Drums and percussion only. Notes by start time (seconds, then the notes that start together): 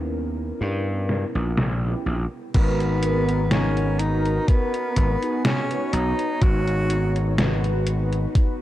1.09 snare
1.57 snare
2.54 kick, closed hi-hat, crash
2.80 closed hi-hat
3.03 closed hi-hat
3.29 closed hi-hat
3.51 snare, closed hi-hat
3.77 closed hi-hat
3.99 closed hi-hat
4.25 closed hi-hat
4.48 kick, closed hi-hat
4.74 closed hi-hat
4.96 kick, closed hi-hat
5.22 closed hi-hat
5.45 snare, closed hi-hat
5.71 closed hi-hat
5.93 closed hi-hat
6.19 closed hi-hat
6.42 kick, closed hi-hat
6.68 closed hi-hat
6.90 closed hi-hat
7.16 closed hi-hat
7.38 snare, closed hi-hat
7.64 closed hi-hat
7.87 closed hi-hat
8.13 closed hi-hat
8.35 kick, closed hi-hat